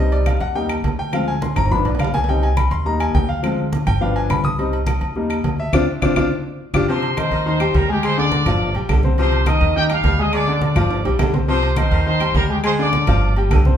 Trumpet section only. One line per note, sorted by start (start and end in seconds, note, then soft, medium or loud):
6.90 7.16 C5 loud
6.90 7.16 C6 medium
7.18 7.44 C5 medium
7.18 7.45 C6 medium
7.46 7.73 C5 loud
7.46 7.73 C6 medium
7.76 7.89 A#4 medium
7.76 7.90 A#5 medium
7.90 8.03 G4 loud
7.90 8.03 G5 medium
8.04 8.17 C5 loud
8.04 8.17 C6 medium
8.18 8.71 D5 loud
8.18 8.72 D6 medium
9.19 9.45 C5 loud
9.19 9.45 C6 medium
9.48 9.74 D#5 medium
9.48 9.74 D#6 medium
9.77 9.83 G4 medium
9.77 9.83 G5 loud
9.90 10.17 F5 loud
10.19 10.33 D#5 medium
10.19 10.34 D#6 medium
10.33 10.60 D5 loud
10.33 10.60 D6 medium
10.63 11.16 D5 medium
10.63 11.16 D6 medium
11.49 11.76 C5 loud
11.49 11.76 C6 medium
11.77 12.04 C5 medium
11.77 12.05 C6 medium
12.06 12.33 C5 loud
12.06 12.34 C6 medium
12.35 12.42 A#4 medium
12.35 12.42 A#5 medium
12.50 12.56 G4 medium
12.50 12.57 G5 medium
12.64 12.71 C5 loud
12.64 12.72 C6 medium
12.79 13.33 D5 loud
12.79 13.33 D6 medium